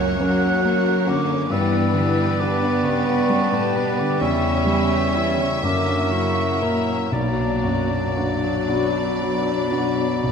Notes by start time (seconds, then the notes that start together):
Already playing: F#2 C#3 F#3 A#3 C#4 A#4 C#5 F#5
0.00 C#4
0.21 F#3 A#3 C#4 F#4 A#4 F#6
0.43 C#4
0.65 A#3 F#4
0.88 A#4
1.07 D3 C#4 D4 F#4 A#4 D6
1.31 C#4
1.50 G2 E3 G3 B3 E4 B4 D5 E6
1.74 B3
1.94 D3 D4
2.20 G4
2.39 D3 B3 D4 B4 D6
2.65 B3
2.84 C#3 G3 B3 C#4 B4 C#6
3.08 B3
3.30 G3 D4
3.52 A2 A3 G4 A5
3.74 B2 B3 D4 B4 B5
3.97 D3 B3 D4 D6
4.21 E2 C#3 G3 C#4 C#5 E5 C#6
4.44 C#4
4.66 G3 E4
4.91 G4
5.14 E3 E4 C#5 E6
5.39 C#3 C#4 C#6
5.63 F#2 D3 F#3 A#3 D4 E4 A#4 D6
5.87 C#4
6.11 C#3 F#3 C#4 E4 C#6
6.36 F#4
6.60 A#2 A#3 E4 A#4 A#5
6.85 C#4
7.11 B1 A#2 F#3 A#3 B3 D4 F#4 D5 A#5
7.38 D4
7.63 F#2 F#4
7.89 D4
8.16 B3 D4 F#4
8.41 D4
8.69 B2 B3 D4 F#4 B5
8.95 D4
9.21 F#3 B3
9.47 D4
9.72 D4 F#4
9.98 D4
10.23 F#1 B1 B3